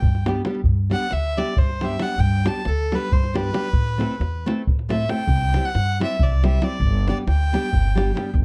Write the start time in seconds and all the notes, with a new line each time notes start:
Already playing: G5
0.02 G2, davul low
0.15 davul high
0.26 G3 B3 D4 G4, davul high
0.35 davul high
0.45 G3 B3 D4 G4, davul high
0.55 davul high
0.64 G2, davul low
0.90 G3 B3 D4 G4 F#5, davul high
1.01 davul high
1.11 D2 E5, davul high
1.37 G3 B3 D4 G4 D5, davul high
1.56 G2 C5, davul low
1.69 davul high
1.81 G3 B3 D4 G4 E5, davul high
2.00 G3 B3 D4 G4 F#5, davul high
2.09 davul high
2.18 G2 G5, davul low
2.45 G3 B3 D4 G4 A5, davul high
2.55 davul high
2.65 D2 A4, davul high
2.92 G3 B3 D4 G4 B4, davul high
3.11 G2 C5, davul low
3.24 davul high
3.34 G3 B3 D4 G4 B4, davul high
3.52 G3 B3 D4 G4, davul high
3.64 davul high
3.73 A2, davul low
3.98 A3 C4 E4 A4, davul high
4.11 davul high
4.20 E2, davul high
4.46 A3 C4 E4 A4, davul high
4.67 A2, davul low
4.79 davul high
4.89 A3 C4 E4 A4 E5, davul high
5.09 A3 C4 E4 A4 G5, davul high
5.19 davul high
5.27 C2, davul low
5.42 davul high
5.54 G3 C4 E4 G4, davul high
5.65 F#5, davul high
5.75 G2, davul high
6.00 G3 C4 E4 G4 E5, davul high
6.19 C2 D5, davul low
6.32 davul high
6.43 G3 C4 E4 G4 E5, davul high
6.53 davul high
6.61 G3 C4 E4 G4 D5, davul high
6.80 G1, davul low
7.07 G3 B3 D4 G4 D5, davul high
7.18 davul high
7.27 D2 G5, davul high
7.53 G3 B3 D4 G4, davul high
7.73 G1, davul low
7.85 davul high
7.95 G3 B3 D4 G4, davul high
8.14 G3 B3 D4 G4, davul high
8.26 davul high
8.34 G1, davul low